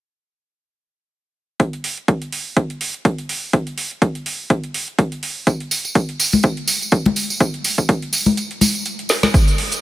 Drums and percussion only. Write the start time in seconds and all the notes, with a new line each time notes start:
1.60 kick, closed hi-hat
1.73 closed hi-hat
1.84 open hi-hat
1.98 closed hi-hat
2.08 kick, closed hi-hat
2.22 closed hi-hat
2.32 open hi-hat
2.57 kick, closed hi-hat
2.70 closed hi-hat
2.81 open hi-hat
2.94 closed hi-hat
3.05 kick, closed hi-hat
3.18 closed hi-hat
3.29 open hi-hat
3.53 kick, closed hi-hat
3.67 closed hi-hat
3.78 open hi-hat
3.91 closed hi-hat
4.02 kick, closed hi-hat
4.15 closed hi-hat
4.26 open hi-hat
4.50 kick, closed hi-hat
4.64 closed hi-hat
4.74 open hi-hat
4.88 closed hi-hat
4.99 kick, closed hi-hat
5.12 closed hi-hat
5.23 open hi-hat
5.47 kick, closed hi-hat, tambourine
5.60 closed hi-hat
5.71 open hi-hat, tambourine
5.85 closed hi-hat, tambourine
5.95 kick, closed hi-hat, tambourine
6.09 closed hi-hat
6.20 open hi-hat, tambourine
6.32 tambourine, high conga
6.43 kick, closed hi-hat, tambourine
6.57 closed hi-hat
6.68 open hi-hat, tambourine
6.81 closed hi-hat, tambourine
6.92 kick, closed hi-hat, tambourine
7.06 closed hi-hat, high conga
7.16 open hi-hat, tambourine
7.30 tambourine
7.40 kick, closed hi-hat, tambourine
7.54 closed hi-hat
7.64 open hi-hat, tambourine
7.78 kick, closed hi-hat, tambourine
7.89 kick, closed hi-hat, tambourine
8.02 closed hi-hat
8.13 open hi-hat, tambourine
8.26 tambourine, high conga
8.37 closed hi-hat, tambourine
8.51 closed hi-hat
8.61 open hi-hat, tambourine, high conga
8.75 closed hi-hat, tambourine
8.85 closed hi-hat, tambourine
8.99 closed hi-hat
9.09 snare, open hi-hat, tambourine
9.23 snare, tambourine, high conga
9.34 kick, closed hi-hat, tambourine, shaker
9.47 closed hi-hat, tambourine, shaker
9.58 open hi-hat
9.72 closed hi-hat, tambourine, shaker